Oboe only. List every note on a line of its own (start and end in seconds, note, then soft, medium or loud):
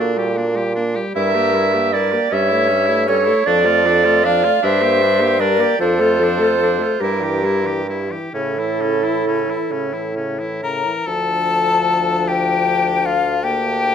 0.00 0.19 D4 medium
0.18 0.39 G4 medium
0.37 0.58 D4 medium
0.57 0.75 G4 medium
0.76 0.97 D4 medium
0.96 1.14 G4 medium
1.15 1.36 E4 medium
1.35 1.56 G4 medium
1.55 1.75 E4 medium
1.73 1.92 G4 medium
1.93 2.13 E4 medium
2.12 2.29 G4 medium
2.30 2.50 C#4 medium
2.49 2.70 E4 medium
2.68 2.88 C#4 medium
2.86 3.06 E4 medium
3.06 3.27 C#4 medium
3.25 3.45 E4 medium
3.46 3.67 D4 loud
3.66 3.87 F4 medium
3.86 4.06 D4 medium
4.04 4.24 F4 medium
4.25 4.45 D4 loud
4.44 4.62 F4 medium
4.62 4.84 D4 loud
4.82 5.04 G4 medium
5.02 5.23 D4 medium
5.22 5.39 G4 medium
5.40 5.63 D4 medium
5.61 5.81 G4 medium
5.81 6.02 D4 medium
6.01 6.24 F4 medium
6.23 6.44 D4 medium
6.43 6.62 F4 medium
6.62 6.84 D4 medium
6.83 7.02 F4 medium
7.03 7.25 E4 medium
7.23 7.46 G4 medium
7.45 7.68 E4 medium
7.66 7.88 G4 medium
7.89 8.13 E4 medium
8.11 8.34 G4 medium
8.34 8.61 C#4 medium
8.59 8.83 E4 medium
8.82 9.06 C#4 medium
9.04 9.26 E4 medium
9.27 9.52 C#4 medium
9.51 9.74 E4 medium
9.72 9.95 C#4 medium
9.94 10.16 E4 medium
10.16 10.41 C#4 medium
10.40 10.62 E4 medium
10.63 11.08 A#4 medium
11.07 12.29 A4 loud
12.28 13.07 G4 loud
13.06 13.45 F4 medium
13.44 13.95 G4 loud